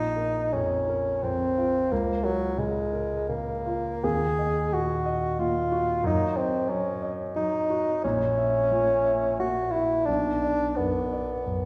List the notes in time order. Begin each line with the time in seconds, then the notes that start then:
Already playing: A#1 D#4
0.16 A#4
0.53 F2 C#4
0.87 A#4
1.23 F2 C4
1.58 F4
1.91 C#2 A#3
2.24 F#3 A#4
2.58 C#3 G#3
2.93 A#4
3.29 C#3 A#3
3.66 F4
4.04 D#2 G#4
4.39 D#5
4.72 A#2 F#4
5.06 D#5
5.39 A#2 F4
5.72 F#4
6.04 F#2 D#4
6.37 C4 D#5
6.69 F#3 C#4
7.02 D#5
7.35 F#3 D#4
7.70 F#4
8.04 A#1 C#4
8.38 E5
8.71 A#2
9.05 E5
9.39 A#2 F#4
9.71 E4 F#4
10.06 B1 D4
10.43 D5
10.76 F#2 B3
11.13 D5
11.46 F#2